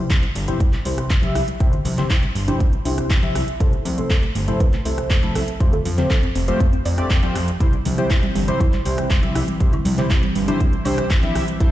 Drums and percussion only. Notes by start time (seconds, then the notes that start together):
0.10 kick, clap, closed hi-hat
0.23 closed hi-hat
0.35 open hi-hat
0.48 closed hi-hat, high conga
0.60 kick, closed hi-hat
0.73 clap, closed hi-hat
0.85 open hi-hat
0.98 cross-stick, closed hi-hat
1.10 kick, clap, closed hi-hat
1.22 closed hi-hat, high conga
1.35 cross-stick, open hi-hat
1.48 closed hi-hat
1.60 kick, closed hi-hat
1.73 closed hi-hat, low conga
1.85 open hi-hat, high conga
1.98 clap, closed hi-hat, low conga
2.10 kick, clap, closed hi-hat
2.23 closed hi-hat
2.35 open hi-hat
2.48 closed hi-hat, high conga
2.60 kick, closed hi-hat
2.73 closed hi-hat
2.85 open hi-hat
2.98 cross-stick, closed hi-hat
3.10 kick, clap, closed hi-hat
3.23 closed hi-hat, high conga
3.35 cross-stick, open hi-hat
3.48 closed hi-hat
3.60 kick, closed hi-hat
3.73 closed hi-hat
3.85 open hi-hat, high conga
3.98 closed hi-hat
4.10 kick, clap, closed hi-hat
4.23 closed hi-hat
4.35 open hi-hat
4.48 closed hi-hat, high conga
4.60 kick, closed hi-hat
4.73 clap, closed hi-hat
4.85 open hi-hat
4.98 cross-stick, closed hi-hat
5.10 kick, clap, closed hi-hat
5.23 closed hi-hat, high conga
5.35 cross-stick, open hi-hat
5.48 closed hi-hat
5.60 kick, closed hi-hat
5.73 closed hi-hat, low conga
5.85 open hi-hat, high conga
5.98 clap, closed hi-hat, low conga
6.10 kick, clap, closed hi-hat
6.23 closed hi-hat
6.35 open hi-hat
6.48 closed hi-hat, high conga
6.60 kick, closed hi-hat
6.73 closed hi-hat
6.85 open hi-hat
6.98 cross-stick, closed hi-hat
7.10 kick, clap, closed hi-hat
7.23 closed hi-hat, high conga
7.35 cross-stick, open hi-hat
7.48 closed hi-hat
7.60 kick, closed hi-hat
7.73 closed hi-hat
7.85 open hi-hat, high conga
7.98 closed hi-hat, high woodblock
8.10 kick, clap, closed hi-hat
8.23 closed hi-hat
8.35 open hi-hat
8.48 closed hi-hat, high conga
8.60 kick, closed hi-hat, high woodblock
8.73 clap, closed hi-hat
8.85 open hi-hat
8.98 cross-stick, closed hi-hat
9.10 kick, clap, closed hi-hat, high woodblock
9.23 closed hi-hat, high conga
9.35 cross-stick, open hi-hat
9.48 closed hi-hat
9.60 kick, closed hi-hat
9.73 closed hi-hat, low conga, high woodblock
9.85 open hi-hat, high conga
9.98 clap, closed hi-hat, low conga
10.10 kick, clap, closed hi-hat
10.23 closed hi-hat, high woodblock
10.35 open hi-hat
10.48 closed hi-hat, high conga
10.60 kick, closed hi-hat
10.73 closed hi-hat
10.85 open hi-hat, high woodblock
10.98 cross-stick, closed hi-hat
11.10 kick, clap, closed hi-hat
11.23 closed hi-hat, high conga
11.35 cross-stick, open hi-hat, high woodblock
11.48 closed hi-hat
11.60 kick, closed hi-hat